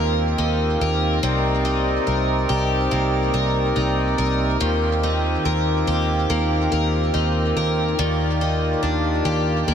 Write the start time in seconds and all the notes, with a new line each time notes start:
Already playing: D#2 D#3 A#3 C4 D#4 F4 G4 A#4
0.38 D#2 D#4
0.81 D#2 A#4
1.23 C2 C3 D#4 A#4 D5
1.65 D#4
2.07 C2 A#4
2.49 C2 G4
2.91 C2 A#3
3.34 C2 A#4
3.76 C2 D#4
4.18 C2 A#4
4.60 D#2 D#3 A#3 C4 F4 G4
5.03 D#4
5.45 D#2 A#4
5.87 D#2 G4
6.30 D#2 A#3
6.72 D#2 A#4
7.14 D#2 D#4
7.56 D#2 A#4
7.99 D#2 D#3 A#3 D5
8.41 D#4
8.83 D#2 D4
9.25 D#2 G4
9.68 D#2 A#3